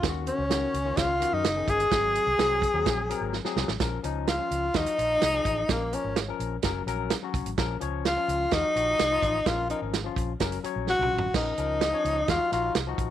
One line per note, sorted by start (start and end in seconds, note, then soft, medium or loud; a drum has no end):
0.02 0.29 D#2 loud
0.02 0.38 D#3 medium
0.02 0.39 C#4 medium
0.02 0.09 F4 medium
0.02 kick loud
0.02 snare loud
0.02 closed hi-hat medium
0.09 0.42 F#4 medium
0.27 0.99 C#4 medium
0.27 closed hi-hat medium
0.38 0.64 C#2 medium
0.49 0.76 D#3 medium
0.49 0.77 C#4 medium
0.49 0.77 F#4 medium
0.49 snare loud
0.49 closed hi-hat medium
0.74 0.91 C#2 medium
0.74 closed hi-hat medium
0.85 1.12 D#3 medium
0.85 1.12 C#4 medium
0.85 1.13 F4 medium
0.97 1.23 C#2 medium
0.97 1.35 F4 loud
0.97 kick medium
0.97 snare loud
0.97 closed hi-hat medium
1.20 1.47 D#3 medium
1.20 1.48 C#4 medium
1.20 1.48 F#4 medium
1.20 closed hi-hat medium
1.32 1.41 F#2 medium
1.32 1.71 D#4 loud
1.44 1.62 F#1 medium
1.44 snare loud
1.44 closed hi-hat loud
1.56 1.83 D#3 medium
1.56 1.83 C#4 medium
1.56 1.83 G#4 medium
1.68 1.85 G1 loud
1.68 3.34 G#4 loud
1.68 kick medium
1.68 closed hi-hat medium
1.80 closed hi-hat soft
1.91 2.17 G#1 loud
1.91 2.27 F#3 medium
1.91 2.28 C4 medium
1.91 2.28 G#4 medium
1.91 kick loud
1.91 snare loud
1.91 closed hi-hat medium
2.15 closed hi-hat medium
2.27 2.35 C2 medium
2.38 2.64 C2 medium
2.38 2.65 F#3 medium
2.38 2.66 C4 medium
2.38 2.66 G#4 loud
2.38 snare loud
2.38 closed hi-hat medium
2.62 kick medium
2.62 closed hi-hat medium
2.74 2.83 D#2 medium
2.74 3.01 F#3 medium
2.74 3.01 C4 medium
2.74 3.02 G#4 medium
2.86 3.12 A#1 medium
2.86 kick medium
2.86 snare loud
2.86 closed hi-hat medium
3.09 3.36 F#3 medium
3.09 3.37 C4 medium
3.09 3.37 A#4 medium
3.09 closed hi-hat medium
3.21 3.38 G#1 medium
3.33 snare medium
3.44 3.72 F#3 medium
3.44 3.72 C4 medium
3.44 3.72 G#4 medium
3.44 snare medium
3.56 3.65 C2 medium
3.56 snare medium
3.68 3.77 A1 medium
3.68 snare medium
3.80 3.97 A#1 loud
3.80 3.98 F3 medium
3.80 3.99 C#4 medium
3.80 3.99 A#4 medium
3.80 kick medium
3.80 snare loud
3.80 closed hi-hat medium
4.03 4.38 C#2 medium
4.03 4.31 F3 medium
4.03 4.31 C#4 medium
4.03 4.31 D#4 loud
4.03 closed hi-hat medium
4.28 4.78 F4 medium
4.28 snare loud
4.28 closed hi-hat medium
4.38 4.65 F3 medium
4.38 4.66 C#4 medium
4.38 4.66 F4 medium
4.51 4.68 C#2 medium
4.51 closed hi-hat medium
4.74 4.83 D#2 medium
4.74 4.92 F3 medium
4.74 4.93 D#4 medium
4.74 5.72 D#4 loud
4.74 4.93 F#4 medium
4.74 kick medium
4.74 snare loud
4.74 closed hi-hat medium
4.86 muted fingered electric bass stroke soft
4.86 closed hi-hat medium
4.97 5.16 A#1 medium
4.97 5.25 F3 medium
4.97 5.25 D#4 medium
4.97 5.25 F4 medium
4.97 closed hi-hat medium
5.22 5.39 C2 medium
5.22 snare loud
5.22 closed hi-hat loud
5.33 5.60 F3 medium
5.33 5.61 D#4 medium
5.33 5.61 G#4 medium
5.45 5.63 A1 medium
5.45 kick medium
5.45 closed hi-hat medium
5.68 5.95 A#1 loud
5.68 5.87 F3 medium
5.68 5.96 A#3 medium
5.68 5.87 C#4 medium
5.68 5.88 A#4 medium
5.68 kick loud
5.68 snare loud
5.68 closed hi-hat medium
5.92 6.19 F3 medium
5.92 6.20 C#4 medium
5.92 6.17 C#4 medium
5.92 6.20 A#4 medium
5.92 closed hi-hat medium
6.04 6.30 G#1 medium
6.16 snare loud
6.16 closed hi-hat medium
6.28 6.55 F3 medium
6.28 6.56 C#4 medium
6.28 6.56 A#4 medium
6.39 6.57 A#1 medium
6.39 closed hi-hat medium
6.63 6.81 F#1 medium
6.63 6.82 F#3 medium
6.63 6.82 C#4 medium
6.63 6.82 A#4 loud
6.63 kick medium
6.63 snare loud
6.63 closed hi-hat medium
6.86 7.12 A#1 medium
6.86 7.14 F#3 medium
6.86 7.14 C#4 medium
6.86 7.15 A#4 loud
6.86 closed hi-hat medium
7.10 snare loud
7.10 closed hi-hat loud
7.23 7.49 F#3 medium
7.23 7.50 C#4 medium
7.23 7.50 F#4 medium
7.34 7.43 C2 loud
7.34 kick medium
7.34 closed hi-hat medium
7.46 7.54 A1 medium
7.46 closed hi-hat medium
7.57 7.75 A#1 loud
7.57 7.76 F3 medium
7.57 7.76 C#4 medium
7.57 7.76 A#4 loud
7.57 kick medium
7.57 snare loud
7.57 closed hi-hat medium
7.80 8.16 C#2 medium
7.80 8.08 F3 medium
7.80 8.08 C#4 medium
7.80 8.09 C#5 loud
7.80 closed hi-hat medium
8.05 8.55 F4 medium
8.05 snare loud
8.05 closed hi-hat medium
8.16 8.43 F3 medium
8.16 8.44 C#4 medium
8.16 8.44 F4 medium
8.28 8.45 C#2 medium
8.28 closed hi-hat medium
8.51 8.61 D#2 medium
8.51 8.70 F3 medium
8.51 8.70 D#4 medium
8.51 9.49 D#4 loud
8.51 8.70 F#4 medium
8.51 kick medium
8.51 snare loud
8.51 closed hi-hat medium
8.64 muted fingered electric bass stroke soft
8.75 8.93 A#1 medium
8.75 9.02 F3 medium
8.75 9.02 D#4 medium
8.75 9.03 F#4 medium
8.75 closed hi-hat medium
8.99 9.16 C2 medium
8.99 snare loud
8.99 closed hi-hat loud
9.11 9.37 F3 medium
9.11 9.38 D#4 medium
9.11 9.38 F4 loud
9.22 9.40 A1 medium
9.22 kick medium
9.22 closed hi-hat medium
9.46 9.72 A#1 loud
9.46 9.64 F3 medium
9.46 9.64 C#4 medium
9.46 9.70 F4 medium
9.46 9.65 A#4 medium
9.46 kick medium
9.46 snare loud
9.46 closed hi-hat medium
9.69 9.96 F3 medium
9.69 9.97 C#4 medium
9.69 9.81 D#4 medium
9.69 9.97 A#4 medium
9.69 closed hi-hat medium
9.82 10.07 G#1 medium
9.94 snare loud
9.94 closed hi-hat medium
10.04 10.31 F3 medium
10.04 10.32 C#4 medium
10.04 10.32 F4 medium
10.16 10.34 A#1 medium
10.16 kick medium
10.16 closed hi-hat medium
10.40 10.57 F#1 medium
10.40 10.58 F#3 medium
10.40 10.58 C#4 medium
10.40 10.59 A#4 medium
10.40 kick medium
10.40 snare loud
10.40 closed hi-hat medium
10.52 closed hi-hat medium
10.64 10.90 F#3 medium
10.64 10.91 C#4 medium
10.64 10.91 C#5 medium
10.64 muted fingered electric bass stroke soft
10.64 closed hi-hat medium
10.76 10.93 A#1 medium
10.87 11.32 F#4 loud
10.87 snare medium
10.99 11.11 C2 medium
10.99 11.26 F#3 medium
10.99 11.26 C#4 medium
10.99 11.27 F4 medium
10.99 mid tom medium
11.11 11.28 A1 medium
11.18 floor tom loud
11.34 11.51 A#1 loud
11.34 11.52 F3 medium
11.34 11.53 C#4 medium
11.34 12.32 D#4 loud
11.34 11.53 A#4 medium
11.34 kick medium
11.34 snare loud
11.34 splash medium
11.58 11.92 C#2 medium
11.58 11.84 F3 medium
11.58 11.85 C#4 medium
11.58 11.85 A#4 medium
11.58 closed hi-hat medium
11.81 snare loud
11.81 closed hi-hat medium
11.92 12.19 F3 medium
11.92 12.20 C#4 medium
11.92 12.20 C#5 loud
12.05 12.22 C#2 medium
12.05 closed hi-hat medium
12.28 12.37 D#2 medium
12.28 12.46 F3 medium
12.28 12.46 D#4 medium
12.28 12.52 F4 loud
12.28 12.47 F#4 medium
12.28 kick medium
12.28 snare loud
12.28 closed hi-hat medium
12.40 muted fingered electric bass stroke soft
12.51 12.69 A#1 medium
12.51 12.78 F3 medium
12.51 12.79 D#4 medium
12.51 12.74 F4 medium
12.51 12.79 F#4 medium
12.51 snare soft
12.51 closed hi-hat medium
12.75 12.92 C2 medium
12.75 snare loud
12.75 closed hi-hat medium
12.87 13.10 F3 medium
12.87 13.10 D#4 medium
12.87 13.10 F#4 medium
12.98 13.10 A1 medium
12.98 kick medium
12.98 closed hi-hat medium